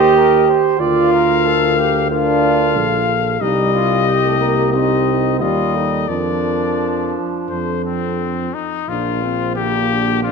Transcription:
0.00 0.52 D#2 medium
0.00 0.77 G4 loud
0.00 0.50 A#4 medium
0.00 0.14 C5 medium
0.00 0.50 D#5 medium
0.16 0.47 A#4 medium
0.48 0.81 C5 medium
0.79 2.77 D2 medium
0.79 1.81 F4 loud
0.79 2.07 A#4 medium
0.79 1.12 D5 medium
0.79 2.06 F5 medium
1.13 1.47 A#4 medium
1.45 1.76 A4 medium
1.77 2.09 G4 medium
2.10 3.05 D4 loud
2.10 3.12 F4 medium
2.10 2.78 A#4 medium
2.10 3.43 F5 medium
2.76 3.40 A#1 medium
2.76 3.41 A4 medium
3.41 5.41 C2 medium
3.41 4.19 G3 medium
3.41 3.71 D#4 medium
3.41 4.70 G4 medium
3.41 4.72 D#5 medium
3.73 4.06 F4 medium
4.07 4.72 G4 medium
4.25 4.40 A3 medium
4.41 4.76 A#3 medium
4.72 5.42 C4 medium
4.72 5.43 D#4 medium
4.72 5.38 G4 medium
4.72 5.38 D#5 medium
5.40 6.08 D#2 soft
5.40 6.08 G3 medium
5.40 5.77 F4 medium
5.40 5.76 G4 soft
5.40 6.10 D#5 medium
5.75 6.09 D#4 medium
5.75 6.11 A4 soft
6.08 7.17 F2 medium
6.08 8.51 F3 medium
6.08 8.52 D4 medium
6.08 7.19 A#4 medium
6.08 7.19 D5 medium
7.49 8.53 F2 soft
7.49 8.53 A4 medium
7.49 7.83 C5 soft
7.85 8.55 C4 medium
8.54 8.90 D#4 medium
8.88 10.32 A#1 soft
8.88 9.52 F3 soft
8.88 9.24 A#3 soft
8.88 9.25 D4 soft
8.88 9.55 F4 medium
9.23 9.56 C4 soft
9.23 9.59 C4 soft
9.56 10.22 D3 soft
9.56 10.26 A#3 soft
9.56 9.90 A#3 soft
9.56 10.22 G4 medium
9.91 10.23 D4 soft
10.23 10.32 D3 soft
10.23 10.32 C4 soft
10.23 10.32 D4 soft
10.23 10.32 F4 medium

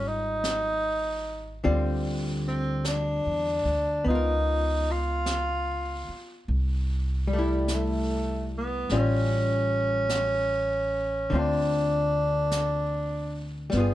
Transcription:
0.00 1.61 G#1 medium
0.00 1.63 G3 soft
0.00 1.64 F4 soft
0.08 1.66 D#4 medium
0.44 brush sweep soft
0.44 snare soft
0.44 hi-hat pedal soft
1.64 3.22 D2 medium
1.64 4.06 D3 soft
1.64 4.06 G3 soft
1.64 4.04 C4 soft
1.64 4.06 F4 soft
1.64 brush sweep soft
2.48 2.84 C4 medium
2.85 4.03 D4 medium
2.85 brush sweep soft
2.85 snare soft
2.85 hi-hat pedal soft
3.26 3.63 E2 soft
3.65 4.03 D2 soft
4.04 6.04 C#2 medium
4.04 6.47 B3 soft
4.04 4.92 D#4 medium
4.04 brush sweep soft
4.10 6.50 F4 soft
4.15 6.52 A#4 soft
4.91 6.50 F4 medium
5.26 brush sweep soft
5.26 snare soft
5.26 hi-hat pedal soft
6.08 muted upright bass stroke soft
6.47 8.86 C2 medium
6.47 brush sweep soft
7.27 8.89 G3 soft
7.33 7.76 G3 medium
7.33 8.92 A3 soft
7.39 8.93 E4 soft
7.68 brush sweep soft
7.68 snare soft
7.68 hi-hat pedal soft
7.75 8.53 A3 medium
8.58 8.99 B3 medium
8.89 11.27 A1 medium
8.89 11.31 G3 soft
8.89 11.32 C#4 soft
8.89 11.33 F4 soft
8.89 brush sweep soft
8.89 snare soft
8.98 11.40 C#4 medium
10.09 brush sweep soft
10.09 snare soft
10.09 hi-hat pedal soft
11.30 13.69 D2 medium
11.30 13.72 D3 soft
11.30 13.69 A3 soft
11.30 13.73 C4 soft
11.30 brush sweep soft
11.35 13.58 D4 medium
11.35 13.74 F4 soft
12.51 brush sweep soft
12.51 snare soft
12.51 hi-hat pedal soft
13.70 13.94 G1 medium
13.70 13.94 G3 soft
13.70 13.94 B3 soft
13.70 brush sweep soft
13.70 snare soft
13.77 13.94 B3 medium
13.77 13.94 F4 soft
13.77 13.94 G#4 soft

